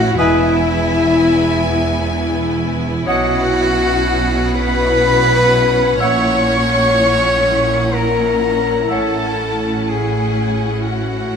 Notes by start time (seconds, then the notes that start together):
Already playing: A1 A2 C#4 E4 F#4 E5 F#5
0.18 E1 E2 B3 E4 B4 D#5 E5 G#5
1.16 E4
3.05 B1 B2 C#4 F#4 C#5 D#5 F#5
4.54 B4 B5
6.00 A#1 A#2 E4 C#5 E5 F#5 C#6
7.93 A#4 A#5
8.88 A1 A2 C#4 A4 C#5 E5 F#5 A5
9.89 G#4 G#5
10.85 F#4 F#5